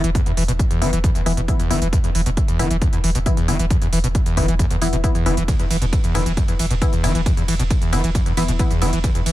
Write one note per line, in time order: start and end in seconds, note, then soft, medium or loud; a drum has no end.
0.00 0.15 E1 medium
0.00 0.10 E3 medium
0.00 sub drop medium
0.04 closed hi-hat medium
0.15 0.21 E2 loud
0.15 kick loud
0.15 closed hi-hat medium
0.26 0.32 E2 medium
0.26 closed hi-hat medium
0.37 0.48 E1 loud
0.37 0.43 E3 loud
0.37 open hi-hat loud
0.48 0.59 E1 medium
0.48 0.52 B2 loud
0.48 closed hi-hat medium
0.59 kick loud
0.59 closed hi-hat medium
0.71 0.83 E2 loud
0.71 closed hi-hat medium
0.82 0.92 E1 loud
0.82 0.94 E3 medium
0.82 0.91 E3 medium
0.82 0.94 B3 medium
0.82 0.94 E4 medium
0.82 open hi-hat loud
0.93 1.04 E1 medium
0.93 0.99 E3 medium
0.93 closed hi-hat medium
1.04 1.10 E2 loud
1.04 kick loud
1.04 closed hi-hat medium
1.15 1.21 E2 medium
1.15 closed hi-hat medium
1.26 1.37 E1 loud
1.26 1.45 E3 medium
1.26 1.32 E3 loud
1.26 1.45 B3 medium
1.26 1.45 E4 medium
1.26 open hi-hat loud
1.37 1.48 E1 medium
1.37 1.41 B2 loud
1.37 closed hi-hat medium
1.48 1.61 E3 medium
1.48 1.61 B3 medium
1.48 1.61 E4 medium
1.48 kick loud
1.48 closed hi-hat medium
1.60 1.72 E2 loud
1.60 closed hi-hat medium
1.71 1.81 E1 loud
1.71 1.83 E3 medium
1.71 1.80 E3 medium
1.71 1.83 B3 medium
1.71 1.83 E4 loud
1.71 open hi-hat loud
1.82 1.93 E1 medium
1.82 1.88 E3 medium
1.82 closed hi-hat medium
1.93 1.99 E2 loud
1.93 kick loud
1.93 closed hi-hat medium
2.04 2.10 E2 medium
2.04 closed hi-hat medium
2.15 2.26 E1 loud
2.15 2.21 E3 loud
2.15 open hi-hat loud
2.26 2.37 E1 medium
2.26 2.30 B2 loud
2.26 closed hi-hat medium
2.37 kick loud
2.37 closed hi-hat medium
2.48 2.61 E2 loud
2.48 closed hi-hat medium
2.59 2.70 E1 loud
2.59 2.72 E3 loud
2.59 2.69 E3 medium
2.59 2.72 B3 medium
2.59 2.72 E4 loud
2.59 open hi-hat loud
2.71 2.81 E1 medium
2.71 2.77 E3 medium
2.71 closed hi-hat medium
2.82 2.88 E2 loud
2.82 kick loud
2.82 closed hi-hat medium
2.93 2.99 E2 medium
2.93 closed hi-hat medium
3.04 3.14 E1 loud
3.04 3.10 E3 loud
3.04 open hi-hat loud
3.15 3.26 E1 medium
3.15 3.19 B2 loud
3.15 closed hi-hat medium
3.26 3.39 E3 medium
3.26 3.39 B3 medium
3.26 3.39 E4 loud
3.26 kick loud
3.26 closed hi-hat medium
3.37 3.50 E2 loud
3.37 closed hi-hat medium
3.48 3.59 E1 loud
3.48 3.61 E3 medium
3.48 3.58 E3 medium
3.48 3.61 B3 medium
3.48 3.61 E4 medium
3.48 open hi-hat loud
3.59 3.70 E1 medium
3.59 3.66 E3 medium
3.59 closed hi-hat medium
3.70 3.77 E2 loud
3.70 kick loud
3.70 closed hi-hat medium
3.82 3.88 E2 medium
3.82 closed hi-hat medium
3.93 4.03 E1 loud
3.93 3.99 E3 loud
3.93 open hi-hat loud
4.04 4.15 E1 medium
4.04 4.08 B2 loud
4.04 closed hi-hat medium
4.15 kick loud
4.15 closed hi-hat medium
4.26 4.39 E2 loud
4.26 closed hi-hat medium
4.37 4.48 E1 loud
4.37 4.50 E3 medium
4.37 4.46 E3 medium
4.37 4.50 B3 medium
4.37 4.50 E4 medium
4.37 kick medium
4.37 open hi-hat loud
4.48 4.59 E1 medium
4.48 4.54 E3 medium
4.48 closed hi-hat medium
4.59 4.66 E2 loud
4.59 kick loud
4.59 closed hi-hat medium
4.71 4.77 E2 medium
4.71 closed hi-hat medium
4.82 4.92 E1 loud
4.82 4.88 E3 loud
4.82 5.01 E3 medium
4.82 5.01 B3 medium
4.82 5.01 E4 medium
4.82 open hi-hat loud
4.93 5.04 E1 medium
4.93 4.96 B2 loud
4.93 closed hi-hat medium
5.04 5.16 E3 medium
5.04 5.16 B3 medium
5.04 5.16 E4 medium
5.04 kick loud
5.04 closed hi-hat medium
5.15 5.28 E2 loud
5.15 closed hi-hat medium
5.26 5.37 E1 loud
5.26 5.35 E3 medium
5.26 5.39 E3 medium
5.26 5.39 B3 medium
5.26 5.39 E4 loud
5.26 open hi-hat loud
5.37 5.48 E1 medium
5.37 5.43 E3 medium
5.37 closed hi-hat medium
5.48 5.54 E2 loud
5.48 kick loud
5.48 closed hi-hat medium
5.48 ride medium
5.59 5.66 E2 medium
5.59 closed hi-hat medium
5.70 5.81 E1 loud
5.70 5.77 E3 loud
5.70 open hi-hat loud
5.70 ride medium
5.82 5.93 E1 medium
5.82 5.85 B2 loud
5.82 closed hi-hat medium
5.93 kick loud
5.93 closed hi-hat medium
5.93 ride medium
6.04 6.16 E2 loud
6.04 closed hi-hat medium
6.15 6.25 E1 loud
6.15 6.24 E3 medium
6.15 6.27 E3 loud
6.15 6.27 B3 medium
6.15 6.27 E4 loud
6.15 open hi-hat loud
6.15 ride medium
6.26 6.37 E1 medium
6.26 6.32 E3 medium
6.26 closed hi-hat medium
6.37 6.43 E2 loud
6.37 kick loud
6.37 closed hi-hat medium
6.37 ride medium
6.48 6.54 E2 medium
6.48 closed hi-hat medium
6.59 6.70 E1 loud
6.59 6.66 E3 loud
6.59 open hi-hat loud
6.59 ride medium
6.71 6.81 E1 medium
6.71 6.74 B2 loud
6.71 closed hi-hat medium
6.82 6.94 E3 medium
6.82 6.94 B3 medium
6.82 6.94 E4 loud
6.82 kick loud
6.82 closed hi-hat medium
6.82 ride medium
6.93 7.05 E2 loud
6.93 closed hi-hat medium
7.04 7.14 E1 loud
7.04 7.13 E3 medium
7.04 7.16 E3 medium
7.04 7.16 B3 medium
7.04 7.16 E4 medium
7.04 open hi-hat loud
7.04 ride medium
7.15 7.26 E1 medium
7.15 7.21 E3 medium
7.15 closed hi-hat medium
7.26 7.32 E2 loud
7.26 kick loud
7.26 closed hi-hat medium
7.26 ride medium
7.37 7.43 E2 medium
7.37 closed hi-hat medium
7.48 7.59 E1 loud
7.48 7.54 E3 loud
7.48 open hi-hat loud
7.48 ride medium
7.59 7.70 E1 medium
7.59 7.63 B2 loud
7.59 closed hi-hat medium
7.70 kick loud
7.70 closed hi-hat medium
7.70 ride medium
7.82 7.94 E2 loud
7.82 closed hi-hat soft
7.93 8.03 E1 loud
7.93 8.02 E3 medium
7.93 8.05 E3 medium
7.93 8.05 B3 medium
7.93 8.05 E4 medium
7.93 open hi-hat loud
7.93 ride medium
8.04 8.15 E1 medium
8.04 8.10 E3 medium
8.04 closed hi-hat medium
8.15 8.21 E2 loud
8.15 kick loud
8.15 closed hi-hat medium
8.15 ride medium
8.26 8.32 E2 medium
8.26 closed hi-hat medium
8.37 8.48 E1 loud
8.37 8.56 E3 medium
8.37 8.43 E3 loud
8.37 8.56 B3 medium
8.37 8.56 E4 medium
8.37 open hi-hat loud
8.37 ride medium
8.48 8.59 E1 medium
8.48 8.52 B2 loud
8.48 closed hi-hat medium
8.59 8.72 E3 medium
8.59 8.72 B3 medium
8.59 8.72 E4 medium
8.59 kick loud
8.59 closed hi-hat medium
8.59 ride medium
8.71 8.83 E2 loud
8.71 closed hi-hat medium
8.82 8.92 E1 loud
8.82 8.94 E3 medium
8.82 8.91 E3 medium
8.82 8.94 B3 medium
8.82 8.94 E4 loud
8.82 open hi-hat loud
8.82 ride medium
8.93 9.04 E1 medium
8.93 8.99 E3 medium
8.93 closed hi-hat medium
9.04 9.10 E2 loud
9.04 kick loud
9.04 closed hi-hat medium
9.04 ride medium
9.15 9.21 E2 medium
9.15 closed hi-hat medium
9.26 9.32 E1 loud
9.26 9.32 E3 loud
9.26 open hi-hat loud
9.26 ride medium